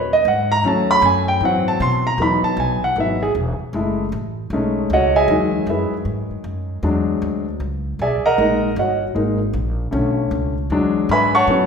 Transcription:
Already playing: A#2 B4
0.13 D#5
0.25 G#2 F#5
0.52 A#5
0.64 D#2 F#3 A3 C#4 A5
0.91 B5
1.02 F#2 G#5
1.28 G5
1.40 G#2 E3 F#3 C4
1.45 F#5
1.68 A5
1.80 B2 C6
2.07 A#5
2.18 E2 E3 F#3 B3 D#4
2.22 B5
2.43 A5, muted upright bass stroke
2.57 B1 G#5
2.82 F#5, muted upright bass stroke
2.96 G#1 E3 F#3 B3 D#4
3.00 E5
3.23 G#4
3.35 E1
3.59 muted upright bass stroke
3.73 F#1 G#3 A3 E4
4.12 A1
4.50 B1 G#3 A3 C#4 D#4
4.90 C#2 D#5 F#5
4.94 F#4 C#5
5.16 G#4 D#5 E5 G#5
5.28 E2 D#3 F#3 G#3
5.67 F#2 E4 G#4 B4 E5
5.91 muted upright bass stroke
6.05 G#2
6.31 muted upright bass stroke
6.44 F#2
6.83 E2 F#3 G#3 D4
7.22 D2
7.60 C#2
7.99 B1 G#4 D5 E5 G#5
8.24 A#4 D#5 F#5 A#5, muted upright bass stroke
8.38 A#1 G#3 A#3 D#4
8.76 G1 F#4 C#5 D#5 F#5
9.15 G#1 G#3 A#3 D#4
9.53 A#1
9.91 B1 D3 A3 C#4
10.31 C#2
10.70 E2 F#3 G#3 D4
11.09 G#2 B4 E5 G#5 B5
11.35 C#5 F#5 A5 C#6
11.47 A2 F#3 B3 C#4

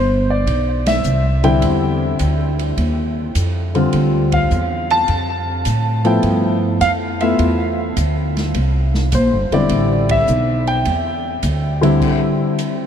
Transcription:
Already playing: G1 C5
0.30 D5
0.46 B1, ride
0.86 E5, snare, ride
1.04 C2, hi-hat pedal
1.43 D3 G3 C4 E4 G5, ride
1.62 E2, ride
2.19 D2, hi-hat pedal, ride
2.59 ride
2.77 D#2, ride
3.35 F2, hi-hat pedal, ride
3.75 D3 G3 C4 F4, ride
3.93 D2, ride
4.32 F5, kick, ride
4.51 E2, hi-hat pedal
4.90 A5, ride
5.08 F2, ride
5.65 A2, hi-hat pedal, ride
6.04 F3 A3 B3 E4 G5, ride
6.23 G2, ride
6.81 F2 F5, hi-hat pedal, ride
7.20 A3 B3 E4 F4 E5, ride
7.39 E2, ride
7.97 D2, hi-hat pedal, ride
8.37 snare, ride
8.54 C2, ride
8.94 snare
9.12 A#1 C5, hi-hat pedal, ride
9.32 G1
9.51 E1 D3 G3 C4 E4 D5, ride
9.69 A1, ride
10.09 E5, kick, ride
10.27 B1, hi-hat pedal
10.67 G5, ride
10.85 E2, ride
11.43 D2, hi-hat pedal, ride
11.81 D3 G3 C4 E4, ride
12.01 kick, crash, ride
12.59 hi-hat pedal, ride

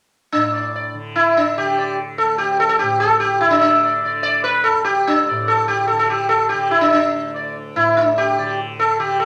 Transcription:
0.32 A2 D4
0.54 D5
0.76 D5
0.95 D3
1.16 E4
1.37 D4
1.58 D3 G4
1.79 D5
2.18 D2 A4
2.38 G4
2.60 A4
2.69 A4
2.79 A2 G4
3.00 A4
3.20 G4
3.41 D3 E4
3.50 D4
3.61 D4
3.85 D5
4.04 D3 D5
4.23 D5
4.44 B4
4.64 D2 A4
4.84 G4
5.07 D4
5.28 A2 D5
5.48 A4
5.68 G4
5.87 A4
5.92 D3
5.99 A4
6.10 G4
6.29 A4
6.49 G4
6.54 D3
6.71 E4
6.81 D4
6.93 D4
7.13 D2
7.36 D5
7.75 A2 E4
7.97 D4
8.18 G4
8.39 D3 D5
8.79 A4
9.00 D3 G4
9.20 A4

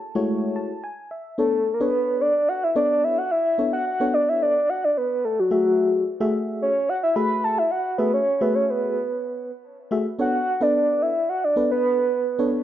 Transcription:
Already playing: A5
0.15 G#3 A3 E4 F#4 C#5
0.56 A5
0.84 G#5
1.11 E5
1.38 B3 D4 A4 C#5
1.74 A#4
1.80 B3 D4 A4 B4 C#5
2.21 D5
2.49 F#5
2.63 E5
2.75 B3 D4 A4 C#5 D5
3.04 E5
3.18 F#5
3.31 E5
3.58 B3 D4 A4 C#5
3.73 F#5
3.86 F#5
4.00 B3 D4 A4 C#5
4.14 D5
4.29 E5
4.42 D5
4.69 F#5
4.84 D5
4.97 B4
5.25 A4
5.39 F#4
5.51 A3 F#4 G#4 E5
6.20 A3 F#4 G#4 E5
6.62 C#5
6.89 F#5
7.03 E5
7.16 A3 F#4 G#4 E5 B5
7.44 A5
7.58 E5
7.71 F#5
7.98 A3 F#4 G#4 B4 E5
8.14 C#5
8.41 A3 F#4 G#4 B4 E5
8.55 C#5
8.70 B4
9.91 A3 F#4 G#4 E5
10.19 B3 D4 A4 C#5 F#5
10.61 B3 D4 A4 B4 D5
11.02 E5
11.29 F#5
11.44 D5
11.56 B3 D4 A4 B4
11.71 B4
12.39 B3 D4 A4 C#5

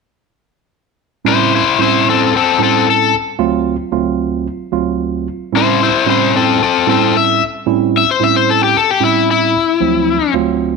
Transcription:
1.25 A2 G3 C4 C#4 E4 C5
1.55 E4 C5
1.79 A2 G3 C4 C#4 E4 C5
2.09 C4 A4
2.36 C4 A4
2.59 A2 G3 C4 C#4 E4
2.64 A4
2.90 A4
3.39 D2 F#3 A3 C4 F4
3.92 D2 F#3 A3 C4 F4
4.72 D2 F#3 A3 C4 F4
5.52 A2 G3 C4 C#4 E4
5.57 C5
5.83 E4 C5
6.06 A2 G3 C4 C#4 E4 C5
6.36 C4 A4
6.63 C4 A4
6.87 A2 G3 C4 C#4 E4 A4
7.17 E5
7.67 A2 G3 C4 C#4 E4
7.97 E5
8.11 C5
8.20 A2 G3 C4 C#4 E4 E5
8.36 C5
8.50 A4
8.64 G4
8.77 A4
8.91 G4
9.01 A2 G3 C4 C#4 E4
9.31 E4
9.81 D2 F3 F#3 A3 C4
10.34 D2 F#3 A3 C4 F4

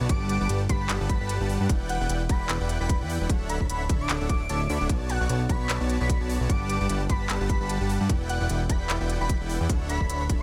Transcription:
0.01 B1 B3 F#4 C#5 D5 A5
0.09 G1 G3 G4 B4 F#5 A5 D6, kick, closed hi-hat
0.29 D6, closed hi-hat
0.40 G1 G3 G4 B4 F#5 A5 D6
0.49 G1 G3 G4 B4 F#5 A5, closed hi-hat
0.69 G1 G3 G4 B4 F#5 A5 B5, kick, closed hi-hat
0.81 B5
0.89 G1 G3 G4 B4 F#5 A5, clap, closed hi-hat
1.00 G1 G3 G4 B4 F#5 A5
1.09 B5, kick, closed hi-hat
1.20 G1 G3 G4 B4 F#5 A5 B5
1.29 closed hi-hat
1.40 G1 G3 G4 B4 F#5 A5
1.49 open hi-hat
1.60 G2 G3 G4 B4 F#5 A5
1.69 E1 E4 B4 D5 F#5 G5, kick, closed hi-hat
1.89 F#5, closed hi-hat
2.00 E1 E4 B4 D5 F#5 G5
2.09 E1 E4 B4 D5 F#5 G5, closed hi-hat
2.29 E1 E4 B4 D5 F#5 G5 B5, kick, closed hi-hat
2.40 B5
2.49 E1 E4 B4 D5 F#5 G5, clap, closed hi-hat
2.60 E1 E4 B4 D5 F#5 G5
2.69 closed hi-hat
2.80 E1 E4 B4 D5 F#5 G5 B5
2.89 kick, closed hi-hat
3.01 E2 E4 B4 D5 F#5 G5
3.10 open hi-hat
3.21 E1 E4 B4 D5 F#5 G5
3.29 D1 D4 A4 C#5 E5 F#5, kick, closed hi-hat
3.49 B5, closed hi-hat
3.60 D1 D4 A4 C#5 E5 B5, kick
3.69 D1 D4 A4 C#5 E5 F#5 B5, closed hi-hat
3.89 D1 D4 A4 C#5 E5 B5, kick, closed hi-hat
4.00 D6
4.09 D1 D4 A4 C#5 E5 F#5, clap, closed hi-hat
4.21 D1 D4 A4 C#5 E5 F#5
4.29 D1 D4 A4 C#5 E5 F#5 D6, kick, closed hi-hat
4.49 D1 D4 A4 C#5 E5 A5, closed hi-hat
4.69 D2 D4 A4 C#5 E5 B5, open hi-hat
4.81 D1 D4 A4 C#5 E5 F#5
4.89 B1 B3 F#4 C#5 D5 A5, kick, closed hi-hat
5.09 F#5, closed hi-hat
5.21 B1 B3 F#4 C#5 D5 C#6
5.29 B1 B3 F#4 C#5 D5 A5, closed hi-hat
5.49 B1 B3 F#4 C#5 D5 B5 C#6, kick, closed hi-hat
5.60 B5
5.69 B1 B3 F#4 C#5 D5 A5, clap, closed hi-hat
5.81 B1 B3 F#4 C#5 D5 A5
5.90 closed hi-hat
6.00 B1 B3 F#4 C#5 D5 B5 C#6
6.09 kick, closed hi-hat
6.20 B1 B3 F#4 C#5 D5 A5
6.30 open hi-hat
6.40 B1 B3 F#4 C#5 D5 A5
6.49 G1 G3 G4 B4 F#5 A5 D6, kick, closed hi-hat
6.69 D6, closed hi-hat
6.81 G1 G3 G4 B4 F#5 A5 D6
6.89 G1 G3 G4 B4 F#5 A5, closed hi-hat
7.09 G1 G3 G4 B4 F#5 A5 B5, kick, closed hi-hat
7.21 B5
7.29 G1 G3 G4 B4 F#5 A5, clap, closed hi-hat
7.40 G1 G3 G4 B4 F#5 A5
7.49 B5, kick, closed hi-hat
7.60 G1 G3 G4 B4 F#5 A5 B5
7.69 closed hi-hat
7.81 G1 G3 G4 B4 F#5 A5
7.89 open hi-hat
8.01 G2 G3 G4 B4 F#5 A5
8.09 E1 E4 B4 D5 F#5 G5, kick, closed hi-hat
8.29 F#5, closed hi-hat
8.40 E1 E4 B4 D5 F#5 G5
8.49 E1 E4 B4 D5 F#5 G5, closed hi-hat
8.69 E1 E4 B4 D5 F#5 G5 B5, kick, closed hi-hat
8.81 B5
8.89 E1 E4 B4 D5 F#5 G5, clap, closed hi-hat
9.01 E1 E4 B4 D5 F#5 G5
9.10 closed hi-hat
9.21 E1 E4 B4 D5 F#5 G5 B5
9.29 kick, closed hi-hat
9.40 E1 E4 B4 D5 F#5 G5
9.49 open hi-hat
9.60 E2 E4 B4 D5 F#5 G5
9.69 D1 D4 A4 C#5 E5 F#5, kick, closed hi-hat
9.89 B5, closed hi-hat
10.00 D1 D4 A4 C#5 E5 B5, kick
10.09 D1 D4 A4 C#5 E5 F#5 B5, closed hi-hat
10.29 D1 D4 A4 C#5 E5 B5, kick, closed hi-hat

